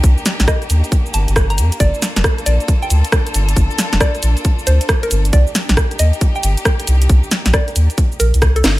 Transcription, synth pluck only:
X:1
M:4/4
L:1/16
Q:"Swing 16ths" 1/4=136
K:Cdor
V:1 name="Synth pluck"
z4 e z4 z a z2 b z2 | d z4 z d z2 g z6 | z4 d z4 z c z2 B z2 | d z4 z e z2 g z6 |
z4 d z4 z B z2 A z2 |]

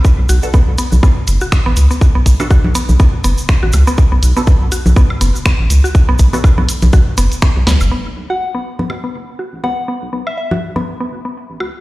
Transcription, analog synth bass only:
X:1
M:4/4
L:1/16
Q:"Swing 16ths" 1/4=122
K:Bm
V:1 name="Analog synth bass" clef=bass
z B,,, B,,, z2 B,,, z B,,, z2 F,,, z2 A,,, C,, z | z B,,, B,,, z2 B,,, z B,,, z2 F,,, z2 A,,, C,, z | z B,,, B,,, z2 B,,, z B,,, z2 F,,, z2 A,,, C,, z | z B,,, B,,, z2 B,,, z B,,, z2 F,,, z2 B,,, D,, F,,, |
z B,,, B,,, z2 B,,, z B,,, z2 F,,, z2 A,,, C,, z | z B,,, B,,, z2 B,,, z B,,, z2 F,,, z2 A,,, C,, z |]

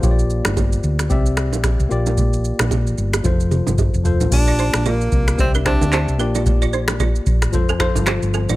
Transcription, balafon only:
X:1
M:4/4
L:1/16
Q:"Swing 16ths" 1/4=112
K:Bb
V:1 name="Balafon"
z16 | z16 | z [Fd] [Ec] z [Fd]2 z3 [DB] [=Ec] z [Ec] z [DB] [Fd] | z [Fd] [Ec] z [Fd]2 z3 [CA] [Ec] z [Fc] z [CA] [Fd] |]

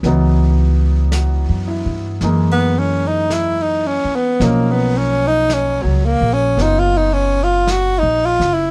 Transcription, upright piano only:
X:1
M:4/4
L:1/16
Q:"Swing" 1/4=55
K:Cblyd
V:1 name="Upright piano"
z4 G2 _F3 z6 z | z16 |]
V:2 name="Upright piano"
[_F,G,CE]8 [F,A,B,E]8 | [^E,^A,^C^D]8 [=B,D^E]8 |]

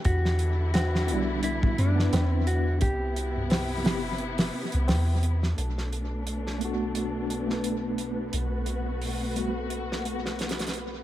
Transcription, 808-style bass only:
X:1
M:4/4
L:1/16
Q:"Swing 16ths" 1/4=87
K:Bphr
V:1 name="808-style bass" clef=bass
E,,6 B,,,4 F,,2 E,,4 | C,,6 G,,,4 z C,, E,,4 | B,,,16 | B,,,16 |]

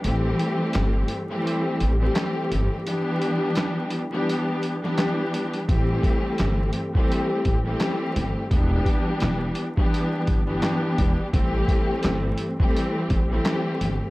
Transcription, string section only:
X:1
M:4/4
L:1/16
Q:"Swing 16ths" 1/4=85
K:Am
V:1 name="String section"
[E,G,A,CG]6 z [E,G,A,CG]4 [E,G,A,CG]4- [E,G,A,CG] | [E,G,B,DG]6 z [E,G,B,DG]4 [E,G,B,DG]4- [E,G,B,DG] | [E,G,A,CG]6 z [E,G,A,CG]4 [E,G,A,CG]4- [E,G,A,CG] | [E,G,B,DG]6 z [E,G,B,DG]4 [E,G,B,DG]4- [E,G,B,DG] |
[E,G,A,CG]6 z [E,G,A,CG]4 [E,G,A,CG]4- [E,G,A,CG] |]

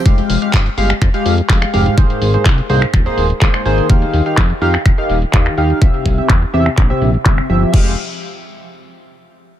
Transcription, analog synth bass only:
X:1
M:4/4
L:1/8
Q:1/4=125
K:Fm
V:1 name="Analog synth bass" clef=bass
F,,, F,,, G,,, G,,, F,, F,, F,,, F,,, | A,,, A,,, C,, C,, E,,, E,,, A,,, A,,, | E,, E,, F,, F,, E,,, E,,, E,, E,, | C,, C,, =E,, E,, B,,, B,,, G,,, G,,, |
F,,, z6 z |]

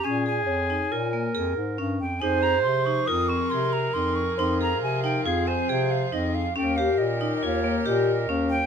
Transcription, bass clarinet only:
X:1
M:5/4
L:1/8
Q:1/4=138
K:Fm
V:1 name="Bass clarinet" clef=bass
B,,2 F,,2 B,,2 F,, A,, G,, F,, | F,,2 C,2 F,,2 C,2 F,,2 | F,,2 C,2 F,,2 C,2 F,,2 | E,,2 B,,2 E,,2 B,,2 E,,2 |]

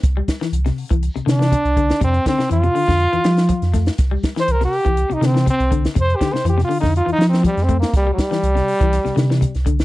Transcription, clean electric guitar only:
X:1
M:4/4
L:1/16
Q:1/4=122
K:C
V:1 name="Clean electric guitar" clef=bass
z G,2 E,2 C,2 E,2 C, D, E, C,2 D,2 | C,2 D, C, E, C, D, D,2 E, G,2 F,2 A,2 | z G,2 E,2 C,2 E,2 C, D, E, C,2 D,2 | C,2 D, C, E, C, D, D,2 E, z2 F,2 A,2 |
z G,2 E,2 C,2 E,2 C, D, E, C,2 D,2 |]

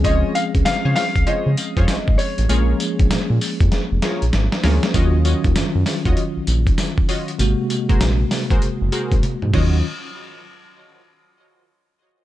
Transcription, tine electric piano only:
X:1
M:4/4
L:1/8
Q:"Swing 16ths" 1/4=98
K:Ebdor
V:1 name="Tine electric piano"
[F,A,CDA]6- [F,A,CDA] z | [F,A,B,DA]6- [F,A,B,DA] [F,A,B,DA] | [E,G,DF]8 | [C,A,B,G]6- [C,A,B,G] [E,G,DF] |
z8 |]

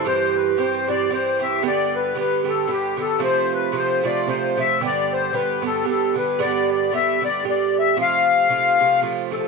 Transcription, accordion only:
X:1
M:3/4
L:1/16
Q:"Swing" 1/4=114
K:C
V:1 name="Accordion"
c2 B2 c2 d2 c2 e2 | d2 B2 B2 A2 G2 A2 | c2 B2 c2 d2 c2 e2 | d2 c2 B2 A2 A2 B2 |
d2 d2 e2 d2 d2 e2 | f8 z2 A/2 A/2 A |]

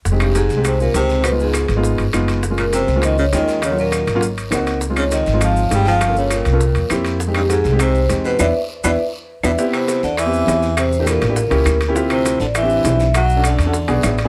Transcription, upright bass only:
X:1
M:4/4
L:1/8
Q:1/4=202
K:Fm
V:1 name="Upright bass" clef=bass
F,,,3 C,,3 D,,2- | D,,3 A,,,2 G,,, _G,,,2- | _G,,,3 D,,3 E,,2- | E,,3 A,,,3 D,,2- |
D,,3 A,,,3 G,,,2- | G,,,3 C,,2 =E,, F,,2- | F,,3 C,,3 =E,,2 | =E,, z2 E,, z3 E,, |
[K:C] z3 E,,3 E,,2- | E,,3 A,,,2 ^C,, D,,2- | D,,3 A,,,3 B,,,2- | B,,,3 E,,2 B,,, A,,,2 |]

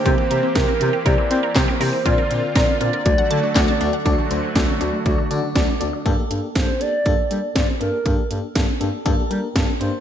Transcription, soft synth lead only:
X:1
M:4/4
L:1/8
Q:1/4=120
K:Gdor
V:1 name="Soft synth lead"
c2 B2 d2 c2 | d2 d d4 z | z8 | z2 c d3 d B- |
B z6 z |]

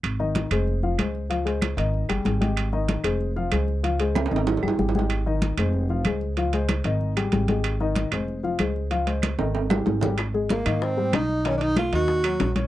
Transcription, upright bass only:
X:1
M:4/4
L:1/8
Q:1/4=189
K:Ab
V:1 name="Upright bass" clef=bass
A,,,3 F,,,3 D,,2- | D,,3 A,,,2 G,,, A,,,2- | A,,,3 F,,,3 D,,2- | D,,3 A,,,2 G,,, A,,,2- |
A,,,3 F,,,3 D,,2- | D,,3 A,,,3 A,,,2- | A,,,3 F,,,3 D,,2- | D,,3 A,,,3 A,,,2- |
A,,,3 A,,3 _C,,2- | _C,,3 ^D,,3 B,,,2 |]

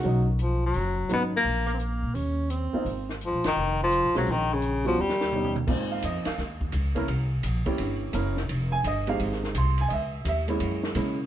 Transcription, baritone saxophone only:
X:1
M:4/4
L:1/8
Q:"Swing" 1/4=170
K:Ab
V:1 name="Baritone saxophone" clef=bass
z2 F, ^F,3 =B, ^A,- | ^A,2 z6 | z2 F, E,2 F,2 _G, | E, D,2 F, G,3 z |
z8 | z8 | z8 | z8 |]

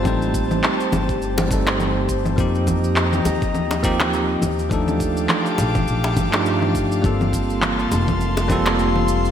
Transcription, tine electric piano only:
X:1
M:4/4
L:1/16
Q:"Swing 16ths" 1/4=103
K:Gm
V:1 name="Tine electric piano"
[G,A,CEc]8- [G,A,CEc]2 [G,A,CEA]6 | [F,B,CEG]8- [F,B,CEG]2 [F,B,CEG]4 z2 | [F,A,DEA]8- [F,A,DEA]2 z [F,A,DEG]4- [F,A,DEG] | [G,B,CFA]8- [G,B,CFA]2 [G,B,CFA]6 |]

